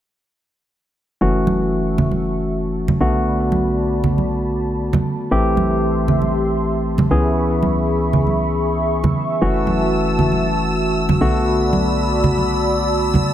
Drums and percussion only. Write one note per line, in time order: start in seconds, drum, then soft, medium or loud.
1.47 high conga medium
1.98 low conga medium
2.11 high conga medium
2.88 high conga medium
2.88 low conga medium
3.52 high conga medium
4.04 low conga medium
4.18 high conga medium
4.93 high conga medium
4.93 low conga medium
5.57 high conga medium
6.08 low conga medium
6.22 high conga medium
6.98 high conga medium
6.98 low conga medium
7.63 high conga medium
8.13 low conga medium
8.27 high conga medium
9.04 high conga medium
9.04 low conga medium
9.67 high conga medium
10.19 low conga medium
10.32 high conga medium
11.09 high conga medium
11.09 low conga medium
11.73 high conga medium
12.24 low conga medium
12.38 high conga medium
13.14 high conga medium
13.14 low conga medium